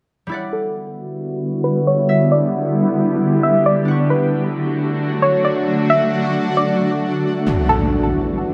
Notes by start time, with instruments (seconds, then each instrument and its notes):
0.27 ambient pad D3 G3 B3 E4 F#4, harp G3 E4
0.32 harp D5 F#5
0.53 synth pluck A4
1.64 synth pluck B4
1.87 synth pluck C#5
2.09 ambient pad G4, harp E5
2.32 synth pluck D5
3.43 synth pluck E5
3.66 synth pluck D5
3.85 ambient pad D3 F#3 A3 D4 F#4, harp D4 F#5
3.91 harp C#6
4.10 synth pluck B4
5.22 synth pluck C#5
5.45 synth pluck D5
5.90 synth pluck E5
6.57 synth pluck D5
7.46 ambient pad E3 G3 B3 D4 F#4, impact
7.69 synth pluck A4